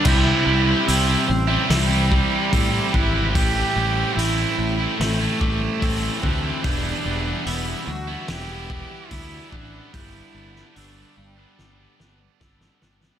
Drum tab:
CC |x---------------|----------------|----------------|----------------|
HH |----o---o---o---|o---o---o---o---|o---o---o---o---|o---o-----------|
SD |--------o-------|--------o-------|--------o-------|---o----o-o-oooo|
BD |o---------o-o-o-|o---------o-o-o-|o---------o-o-o-|o-----------o---|